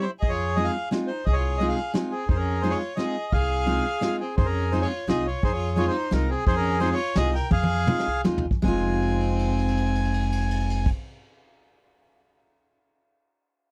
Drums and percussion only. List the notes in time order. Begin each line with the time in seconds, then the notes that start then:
0.23 kick, closed hi-hat
0.58 closed hi-hat
0.92 snare, closed hi-hat
1.27 kick, closed hi-hat
1.61 closed hi-hat
1.95 snare, closed hi-hat
2.29 kick, closed hi-hat
2.63 closed hi-hat
2.99 snare, closed hi-hat
3.32 kick, closed hi-hat
3.67 closed hi-hat
4.02 snare, closed hi-hat
4.38 kick, closed hi-hat
4.73 closed hi-hat
5.09 snare, closed hi-hat
5.43 kick, closed hi-hat
5.78 closed hi-hat
6.12 snare, closed hi-hat
6.47 kick, closed hi-hat
6.81 closed hi-hat
7.16 snare, closed hi-hat
7.51 kick, high tom
7.63 high tom
7.87 mid tom
7.99 snare
8.25 snare
8.38 floor tom
8.51 kick
8.64 kick, crash
8.84 crash
8.93 ride
9.02 crash
9.11 ride
9.20 crash
9.30 ride
9.39 crash
9.49 ride
9.58 crash
9.68 ride
9.77 crash
9.86 ride
9.95 crash
10.05 ride
10.14 crash
10.23 ride
10.32 crash
10.41 ride
10.51 crash
10.60 ride
10.70 crash
10.86 kick, crash